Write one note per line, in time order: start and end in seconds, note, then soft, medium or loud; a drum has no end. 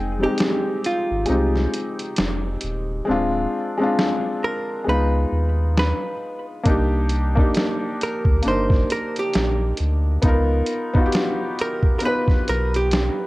0.00 0.27 F1 loud
0.00 0.25 G#3 medium
0.00 0.21 C4 medium
0.00 0.23 D#4 medium
0.00 0.23 G#4 medium
0.00 3.09 G5 medium
0.19 0.25 G3 medium
0.19 0.93 C4 medium
0.19 0.94 D#4 medium
0.23 0.96 G#3 medium
0.23 0.86 G4 loud
0.23 0.95 G4 medium
0.38 snare loud
0.38 closed hi-hat medium
0.84 2.60 F4 medium
0.84 closed hi-hat medium
1.11 1.26 G#1 medium
1.26 1.67 C2 medium
1.26 2.50 G#3 medium
1.26 2.51 C4 medium
1.26 2.52 D#4 medium
1.26 closed hi-hat medium
1.31 2.53 G4 medium
1.56 snare soft
1.74 closed hi-hat medium
1.99 closed hi-hat soft
2.16 2.57 F1 medium
2.16 snare loud
2.16 closed hi-hat medium
2.61 3.02 D#1 loud
2.61 closed hi-hat medium
3.05 3.47 D1 loud
3.05 3.51 G#3 medium
3.05 3.52 C4 medium
3.09 3.54 D4 medium
3.09 3.54 F4 loud
3.77 4.51 G#3 loud
3.77 4.52 C4 medium
3.77 4.53 D4 medium
3.83 4.54 F4 loud
3.99 snare loud
4.44 4.85 A#4 medium
4.84 5.26 C#2 loud
4.84 6.09 G#3 medium
4.84 6.10 B3 medium
4.84 6.11 D#4 medium
4.89 6.12 F4 medium
4.89 5.78 B4 loud
5.32 5.93 D#2 medium
5.77 6.45 B4 medium
5.77 snare loud
6.64 7.43 C2 loud
6.64 7.10 A#3 medium
6.64 7.11 D4 medium
6.64 7.12 D#4 medium
6.64 kick loud
6.64 closed hi-hat medium
6.69 7.13 G4 loud
7.09 closed hi-hat medium
7.35 8.09 A#3 medium
7.35 8.10 D4 medium
7.35 8.11 D#4 medium
7.35 kick medium
7.41 8.12 G4 loud
7.55 snare loud
7.55 closed hi-hat medium
8.01 8.47 A#4 medium
8.01 closed hi-hat medium
8.25 8.42 D2 medium
8.25 kick medium
8.42 8.84 G1 loud
8.42 9.67 A#3 medium
8.42 9.68 D4 medium
8.42 closed hi-hat medium
8.47 9.69 D#4 medium
8.47 9.70 A#4 medium
8.47 8.92 C5 loud
8.70 kick medium
8.70 snare soft
8.90 9.16 A#4 medium
8.90 closed hi-hat medium
9.16 9.77 G4 medium
9.16 closed hi-hat soft
9.33 9.73 A#1 loud
9.33 snare loud
9.33 closed hi-hat medium
9.77 10.18 D2 loud
9.77 closed hi-hat medium
10.22 10.62 C#2 loud
10.22 10.68 B3 medium
10.22 10.69 D#4 medium
10.22 10.70 F4 medium
10.22 kick loud
10.22 closed hi-hat medium
10.27 10.71 A#4 loud
10.66 closed hi-hat medium
10.93 11.67 B3 loud
10.93 11.68 D#4 medium
10.93 11.69 F4 medium
10.93 kick medium
10.99 11.03 F#4 medium
11.06 11.73 G4 loud
11.12 snare loud
11.12 closed hi-hat medium
11.59 11.98 A#4 medium
11.59 closed hi-hat medium
11.83 kick medium
11.99 13.25 B3 medium
11.99 13.26 D#4 medium
11.99 12.04 A#4 medium
11.99 closed hi-hat medium
12.05 13.27 F4 medium
12.05 12.49 B4 loud
12.05 13.27 B4 medium
12.28 kick medium
12.28 snare soft
12.48 13.10 B1 medium
12.48 12.74 A#4 loud
12.48 closed hi-hat medium
12.74 13.27 G4 medium
12.74 closed hi-hat soft
12.91 snare loud
12.91 closed hi-hat medium